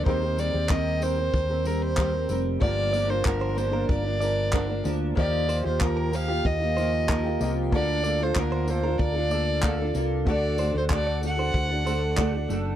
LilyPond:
<<
  \new Staff \with { instrumentName = "Clean electric guitar" } { \time 4/4 \key g \minor \tempo 4 = 94 r1 | r8 d''16 r8 c''16 r16 bes'8 r16 d''16 r4 r16 | r8 c''16 r8 bes'16 r16 g'8 r16 c''16 r16 bes'8. r16 | r8 d''16 r8 c''16 r16 bes'8 r16 d''16 r4 r16 |
r8 c''16 r8 d''16 r16 c''8 r16 c''16 r16 d''8. r16 | }
  \new Staff \with { instrumentName = "Violin" } { \time 4/4 \key g \minor c''8 d''8 ees''8 c''4 bes'16 c''8. r8 | d''8. c''16 bes'8 c''8 d''4. r8 | d''8. c''16 bes'8 f''8 ees''4. r8 | d''8. c''16 bes'8 c''8 d''4. r8 |
d''8. c''16 d''8 fis''2 r8 | }
  \new Staff \with { instrumentName = "Upright piano" } { \time 4/4 \key g \minor <bes ees' g' c''>1 | <a bes f' g' d''>1 | <bes ees' f' g'>2.~ <bes ees' f' g'>8 <bes f' g' ees''>8 | <bes f' d'' a''>1 |
<a d' fis' d''>1 | }
  \new Staff \with { instrumentName = "Steel-string acoustic guitar" } { \time 4/4 \key g \minor <ees g c' g' bes'>16 <c' g' bes'>16 <g c' g' bes'>16 <c' g' bes'>16 <ees g c' g' bes'>8 <g c' g' bes'>16 <c' g' bes'>8 <c' g' bes'>16 <g c' g' bes'>8 <ees g c' g' bes'>16 <c' g' bes'>16 <g c' g' bes'>8 | <g, d f bes d' bes'>8 <f bes d' bes'>16 <f bes d' bes'>16 <g, d f bes d' bes'>8 <f bes d' bes'>16 <f bes d' bes'>8 <f bes d' bes'>16 <f bes d' bes'>8 <g, d f bes d' bes'>16 <f bes d' bes'>16 <f bes d' bes'>8 | <ees f bes f' g'>8 <f bes f' g'>16 <bes f' g'>16 <ees f bes f' g'>8 <f bes f' g'>16 <bes f' g'>8 <bes f' g'>16 <f bes f' g'>8 <ees f bes f' g'>16 <bes f' g'>16 <f bes f' g'>8 | <d bes d' f' a'>8 <bes d' f' a'>16 <d' f' a'>16 <d bes d' f'>8 <bes d' f' a'>16 <d' f' a'>8 <d' f' a'>16 <bes d' f' a'>8 <d bes d' f' a'>16 <d' f' a'>16 <bes d' f' a'>8 |
<d a d' fis' a'>8 <a d' fis' a'>16 <d' fis' a'>16 <d a d' fis' a'>8 <a d' fis' a'>16 <d' fis' a'>8 <d' fis' a'>16 <a d' fis' a'>8 <d a d' fis' a'>16 <d' fis' a'>16 <a d' fis' a'>8 | }
  \new Staff \with { instrumentName = "Fingered electric bass" } { \clef bass \time 4/4 \key g \minor ees,8. ees,4~ ees,16 ees,4. f,,8 | g,,4 g,,4 g,,4. d,8 | ees,8. ees,4~ ees,16 ees,4. c,8 | d,4 d,4 d,4. c,8 |
d,8. d,4~ d,16 d,4. fis,,8 | }
  \new DrumStaff \with { instrumentName = "Drums" } \drummode { \time 4/4 bd8 tamb8 <hc bd>8 tamb8 bd8 tamb8 <hc bd>8 tamb8 | bd8 tamb8 <hc bd>8 tamb8 bd8 tamb8 <hc bd>8 tamb8 | bd8 tamb8 <hc bd>8 tamb8 bd8 tamb8 <hc bd>8 tamb8 | bd8 tamb8 <hc bd>8 tamb8 bd8 tamb8 <hc bd>8 tamb8 |
bd8 tamb8 <hc bd>8 tamb8 bd8 tamb8 <hc bd>8 tamb8 | }
>>